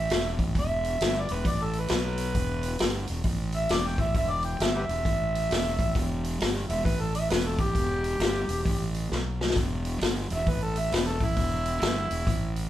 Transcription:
Already playing: harmonica E5
0.10 fingered electric bass E1, snare, open hi-hat
0.39 fingered electric bass A1, kick, open hi-hat
0.55 fingered electric bass E1, kick, open hi-hat
0.60 harmonica E5
0.84 open hi-hat
1.01 fingered electric bass G1, snare, open hi-hat
1.19 harmonica D5
1.29 fingered electric bass E1, open hi-hat
1.33 harmonica B4
1.45 fingered electric bass A1, harmonica D5, kick, open hi-hat
1.64 harmonica A4
1.73 open hi-hat
1.80 harmonica B4
1.88 fingered electric bass B1, snare, open hi-hat
2.18 open hi-hat
2.35 fingered electric bass E1, kick, open hi-hat
2.63 open hi-hat
2.79 fingered electric bass G1, snare, open hi-hat
3.07 fingered electric bass E1, open hi-hat
3.24 fingered electric bass A1, kick, open hi-hat
3.52 harmonica E5, open hi-hat
3.69 fingered electric bass E1, harmonica D5, snare, open hi-hat
3.87 harmonica G5
3.98 fingered electric bass A1, harmonica E5, kick, open hi-hat
4.14 fingered electric bass E1, harmonica E5, kick, open hi-hat
4.30 harmonica D5
4.43 harmonica G5, open hi-hat
4.60 fingered electric bass G1, harmonica E5, snare, open hi-hat
4.75 harmonica G4 B4 E5
4.89 fingered electric bass E1, open hi-hat
5.05 fingered electric bass A1, kick, open hi-hat
5.35 open hi-hat
5.50 fingered electric bass E1, snare, open hi-hat
5.79 fingered electric bass A1, kick, open hi-hat
5.95 fingered electric bass E1, kick, open hi-hat
6.24 open hi-hat
6.40 fingered electric bass G1, snare, open hi-hat
6.69 fingered electric bass E1, harmonica E5, open hi-hat
6.85 fingered electric bass A1, harmonica B4, kick, open hi-hat
7.01 harmonica A4
7.15 harmonica E5, open hi-hat
7.30 fingered electric bass E1, harmonica B4, snare, open hi-hat
7.46 harmonica A4
7.58 fingered electric bass A1, harmonica G4, kick, open hi-hat
7.75 fingered electric bass E1, kick, open hi-hat
8.04 open hi-hat
8.19 fingered electric bass G1, snare, open hi-hat
8.48 fingered electric bass E1, open hi-hat
8.66 fingered electric bass A1, kick, open hi-hat
8.94 open hi-hat
9.12 fingered electric bass B1, snare
9.41 snare
9.50 snare
9.56 fingered electric bass E1, kick, open hi-hat
9.85 open hi-hat
10.01 fingered electric bass G1, snare, open hi-hat
10.30 fingered electric bass E1, harmonica E5, open hi-hat
10.47 fingered electric bass A1, harmonica B4, kick, open hi-hat
10.63 harmonica A4
10.76 harmonica E5, open hi-hat
10.92 fingered electric bass E1, harmonica B4, snare, open hi-hat
11.07 harmonica A4
11.20 fingered electric bass A1, harmonica E4, kick, open hi-hat
11.37 fingered electric bass E1, kick, open hi-hat
11.66 open hi-hat
11.82 fingered electric bass G1, snare, open hi-hat
12.11 fingered electric bass E1, open hi-hat
12.27 fingered electric bass A1, kick, open hi-hat
12.56 open hi-hat

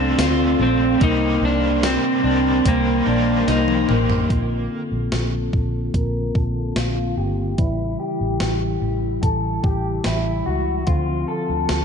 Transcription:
Already playing: fingered electric bass C2, overdriven electric guitar A3 C4 F4, electric slide guitar C4, clean electric guitar D4, tonewheel organ A4 D5 F5 C6
0.18 fingered electric bass D2, clean electric guitar F4, snare, closed hi-hat, tambourine
0.60 fingered electric bass A#1, clean electric guitar C4, electric slide guitar C4
1.00 fingered electric bass C2, overdriven electric guitar C3 G3 A#3, clean electric guitar A#3, electric slide guitar D#4, tonewheel organ A#4 C5 G5, kick, closed hi-hat
1.42 fingered electric bass C2, electric slide guitar D4
1.83 clean electric guitar C4, electric slide guitar C4, snare, closed hi-hat, tambourine
2.24 fingered electric bass C2, overdriven electric guitar A#3 D#4, clean electric guitar D4
2.29 overdriven electric guitar G3
2.65 fingered electric bass C2, electric slide guitar A#3, clean electric guitar C4, kick, closed hi-hat
3.06 fingered electric bass A#1, overdriven electric guitar A#3 D#4, clean electric guitar D4
3.11 overdriven electric guitar G3
3.47 fingered electric bass C2, clean electric guitar D#4, snare, closed hi-hat
3.68 high tom
3.89 fingered electric bass A1, clean electric guitar A#3, mid tom
4.10 floor tom
4.29 fingered electric bass A#1, tonewheel organ D3 A#3 C4 F4, clean electric guitar F4, kick, closed hi-hat
4.71 clean electric guitar A4
4.92 fingered electric bass A#1
5.12 fingered electric bass A#1, clean electric guitar A4, snare, closed hi-hat
5.53 fingered electric bass A#1, kick
5.94 fingered electric bass A#1, clean electric guitar A#4, kick, closed hi-hat
6.35 fingered electric bass A#1, clean electric guitar A4, kick
6.76 fingered electric bass A#1, clean electric guitar F4, snare, closed hi-hat
7.17 fingered electric bass G1, clean electric guitar G4
7.58 fingered electric bass A1, tonewheel organ C#3 E3 G3 E4, clean electric guitar E4, kick, closed hi-hat
8.00 clean electric guitar G4
8.21 fingered electric bass A1
8.40 fingered electric bass A1, clean electric guitar G4, snare, closed hi-hat
8.82 fingered electric bass A1
9.23 fingered electric bass A1, clean electric guitar A4, kick, closed hi-hat
9.64 fingered electric bass A1, clean electric guitar G4, kick
10.04 fingered electric bass A1, clean electric guitar E4, snare, closed hi-hat
10.46 fingered electric bass C#2, clean electric guitar F#4
10.87 fingered electric bass D2, tonewheel organ D3 F3 C4 F4, clean electric guitar F4, kick, closed hi-hat
11.28 clean electric guitar A4
11.50 fingered electric bass D2
11.69 fingered electric bass D2, clean electric guitar A4, snare, closed hi-hat

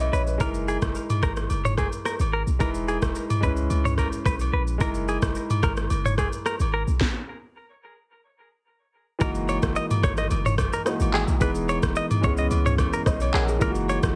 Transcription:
Already playing: grand piano G#3 C#4 E4 B4 E5
0.00 grand piano D#5, high agogo
0.13 808-style bass A#1, clean electric guitar B4, grand piano C#5, shaker
0.27 grand piano B4, shaker
0.38 808-style bass F#1, grand piano G#3 D#4 E4, clean electric guitar A#4, kick, high agogo, shaker
0.43 grand piano A#4
0.54 shaker
0.68 clean electric guitar G#4, high agogo, shaker
0.82 808-style bass F#1, kick, cross-stick, shaker
0.95 shaker
1.10 mid tom, high agogo, shaker
1.23 808-style bass G#1, clean electric guitar A#4, kick, cross-stick, shaker
1.36 cross-stick, shaker
1.50 808-style bass F#1, high agogo, shaker
1.65 clean electric guitar C#5, mid tom, shaker
1.78 clean electric guitar G#4, kick, cross-stick, high agogo, shaker
1.92 shaker
2.05 clean electric guitar A#4, cross-stick, shaker
2.19 808-style bass G#1, high agogo, shaker
2.33 clean electric guitar A#4
2.47 808-style bass B1, shaker
2.59 808-style bass E1, grand piano G#3 D#4 E4 B4, clean electric guitar A#4, kick, high agogo, shaker
2.74 shaker
2.88 clean electric guitar G#4, high agogo, shaker
3.02 808-style bass E1, kick, cross-stick, shaker
3.15 shaker
3.30 mid tom, high agogo, shaker
3.40 808-style bass C#2, grand piano G#3 C#4 E4, clean electric guitar B4, kick, shaker
3.45 grand piano B4
3.57 shaker
3.70 808-style bass C#2, high agogo, shaker
3.85 clean electric guitar C#5, mid tom, shaker
3.98 clean electric guitar A#4, kick, cross-stick, high agogo, shaker
4.12 shaker
4.26 808-style bass B1, clean electric guitar B4, kick, cross-stick, shaker
4.39 high agogo, shaker
4.53 808-style bass A#1, clean electric guitar B4
4.67 shaker
4.78 808-style bass F#1, grand piano G#3 D#4 E4, clean electric guitar A#4, kick, high agogo, shaker
4.83 grand piano A#4
4.94 shaker
5.08 clean electric guitar G#4, high agogo, shaker
5.22 808-style bass F#1, kick, cross-stick, shaker
5.35 shaker
5.50 mid tom, high agogo, shaker
5.63 808-style bass G#1, clean electric guitar A#4, kick, cross-stick, shaker
5.77 cross-stick, shaker
5.90 808-style bass F#1, high agogo, shaker
6.05 clean electric guitar C#5, mid tom, shaker
6.18 clean electric guitar G#4, kick, cross-stick, high agogo, shaker
6.33 shaker
6.46 clean electric guitar A#4, cross-stick, shaker
6.60 808-style bass G#1, high agogo, shaker
6.74 clean electric guitar A#4
6.88 808-style bass B1, shaker
7.01 kick, snare
9.19 808-style bass F#1, grand piano E3 G#3 A#3 D#4, clean electric guitar A#4, kick, high agogo, shaker
9.24 grand piano F#4
9.35 shaker
9.49 clean electric guitar C#5, high agogo, shaker
9.62 808-style bass F#1, kick, cross-stick, shaker
9.76 clean electric guitar D#5, shaker
9.91 mid tom, high agogo, shaker
10.03 808-style bass G#1, clean electric guitar C#5, kick, cross-stick, shaker
10.17 clean electric guitar D#5, cross-stick, shaker
10.31 808-style bass F#1, high agogo, shaker
10.45 clean electric guitar C#5, mid tom, shaker
10.58 kick, cross-stick, high agogo, shaker
10.73 clean electric guitar A#4, shaker
10.85 grand piano E3 G#3 A#3 D#4 F#4, cross-stick, low woodblock, shaker
11.00 808-style bass G#1, high agogo, shaker
11.14 clean electric guitar G#4, clap
11.28 808-style bass B1, shaker
11.40 808-style bass E1, grand piano E3 G#3 B3 D#4 G#4, clean electric guitar B4, kick, high agogo, shaker
11.55 shaker
11.69 clean electric guitar C#5, high agogo, shaker
11.83 808-style bass E1, kick, cross-stick, shaker
11.96 clean electric guitar D#5, shaker
12.11 mid tom, high agogo, shaker
12.21 808-style bass C#2, grand piano E3 G#3 B3 C#4, clean electric guitar C#5, kick, shaker
12.26 grand piano G#4
12.37 clean electric guitar D#5, shaker
12.51 808-style bass C#2, high agogo, shaker
12.66 clean electric guitar C#5, mid tom, shaker
12.78 kick, cross-stick, high agogo, shaker
12.93 clean electric guitar A#4, shaker
13.06 808-style bass B1, grand piano D#5, kick, cross-stick, low woodblock, shaker
13.20 grand piano C#5, high agogo, shaker
13.34 808-style bass A#1, clean electric guitar G#4, grand piano A#4, clap
13.48 grand piano G#4, shaker
13.59 808-style bass F#1, grand piano E3 G#3 A#3 D#4, clean electric guitar A#4, kick, high agogo, shaker
13.64 grand piano F4
13.70 grand piano F#4
13.75 shaker
13.89 clean electric guitar C#5, high agogo, shaker
14.03 808-style bass F#1, kick, cross-stick, shaker

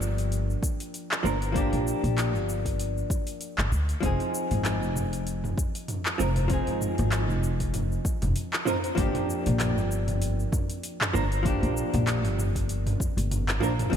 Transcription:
Already playing: upright bass G1, hollow-body jazz guitar F3 A#3 D4 G4
0.02 shaker
0.18 open hi-hat, shaker
0.32 open hi-hat, shaker
0.50 shaker
0.63 kick, shaker
0.80 open hi-hat, shaker
0.94 open hi-hat, shaker
1.11 clap, shaker
1.23 upright bass G1, hollow-body jazz guitar F3 A#3 D4 A#4, shaker
1.42 open hi-hat, shaker
1.52 hollow-body jazz guitar F3 A#3 D4, kick, open hi-hat
1.57 hollow-body jazz guitar G4, shaker
1.73 upright bass A#1, open hi-hat, shaker
1.87 shaker
2.04 upright bass A#1, open hi-hat, shaker
2.18 clap, open hi-hat, shaker
2.34 upright bass G1, shaker
2.49 shaker
2.65 kick, open hi-hat, shaker
2.79 open hi-hat, shaker
2.98 shaker
3.10 kick, shaker
3.27 open hi-hat, shaker
3.41 open hi-hat, shaker
3.58 upright bass G1, clap, shaker
3.72 upright bass D2, shaker
3.89 open hi-hat, shaker
4.00 upright bass F1, hollow-body jazz guitar F3 C4 D#4, kick, mid tom, open hi-hat, shaker
4.06 hollow-body jazz guitar G#4
4.20 open hi-hat, shaker
4.35 shaker
4.51 upright bass G#1, mid tom, open hi-hat, shaker
4.65 clap, open hi-hat, shaker
4.82 upright bass F1, shaker
4.96 mid tom, shaker
5.13 open hi-hat, shaker
5.27 open hi-hat, shaker
5.44 mid tom, shaker
5.58 kick, shaker
5.75 open hi-hat, shaker
5.88 mid tom, open hi-hat, shaker
6.06 clap, shaker
6.18 upright bass F1, hollow-body jazz guitar F3 C4 D#4 A#4, shaker
6.36 mid tom, open hi-hat, shaker
6.48 hollow-body jazz guitar F3 C4 D#4, kick, open hi-hat, shaker
6.53 hollow-body jazz guitar G#4
6.67 upright bass G#1, open hi-hat, shaker
6.81 mid tom, shaker
6.98 upright bass G#1, open hi-hat, shaker
7.12 clap, open hi-hat, shaker
7.29 upright bass F1, mid tom, shaker
7.43 shaker
7.60 kick, open hi-hat, shaker
7.74 mid tom, open hi-hat, shaker
7.92 shaker
8.05 kick, shaker
8.22 upright bass F1, mid tom, open hi-hat, shaker
8.36 open hi-hat, shaker
8.53 clap, shaker
8.65 hollow-body jazz guitar F3 C4 D#4 A#4, mid tom, shaker
8.84 open hi-hat, shaker
8.95 upright bass G1, hollow-body jazz guitar F3 A#3 D4, kick, open hi-hat, shaker
9.00 hollow-body jazz guitar G4
9.15 mid tom, open hi-hat, shaker
9.30 shaker
9.46 upright bass A#1, open hi-hat, shaker
9.60 clap, mid tom, open hi-hat, shaker
9.77 upright bass G1, shaker
9.91 shaker
10.08 mid tom, open hi-hat, shaker
10.22 open hi-hat, shaker
10.40 shaker
10.52 kick, mid tom, shaker
10.70 open hi-hat, shaker
10.83 open hi-hat, shaker
11.01 clap, mid tom, shaker
11.13 upright bass G1, hollow-body jazz guitar F3 A#3 D4 A#4, shaker
11.32 open hi-hat, shaker
11.43 hollow-body jazz guitar F3 A#3 D4, kick, mid tom, open hi-hat, shaker
11.48 hollow-body jazz guitar G4
11.63 upright bass A#1, open hi-hat, shaker
11.77 shaker
11.94 upright bass A#1, mid tom, open hi-hat, shaker
12.07 clap, open hi-hat, shaker
12.24 upright bass G1, open hi-hat, shaker
12.38 mid tom, shaker
12.55 kick, open hi-hat, shaker
12.69 open hi-hat, shaker
12.87 mid tom, open hi-hat, shaker
13.00 kick, shaker
13.17 upright bass G1, open hi-hat, shaker
13.31 mid tom, open hi-hat, shaker
13.49 clap, open hi-hat, shaker
13.60 upright bass A#1, hollow-body jazz guitar F3 A#3 D4 A#4, shaker
13.79 mid tom, open hi-hat, shaker
13.90 upright bass F1, hollow-body jazz guitar F3 C4 D#4, kick, mid tom, open hi-hat

